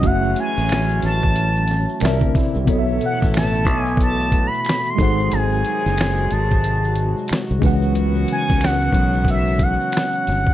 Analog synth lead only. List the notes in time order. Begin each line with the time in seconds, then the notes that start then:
0.06 F#5
0.40 G#5
1.05 A5
3.05 F#5
3.37 A5
3.79 G#5
4.03 A5
4.47 B5
4.90 C6
5.33 G#5
6.32 A5
8.32 G#5
8.65 F#5
9.31 E5
9.63 F#5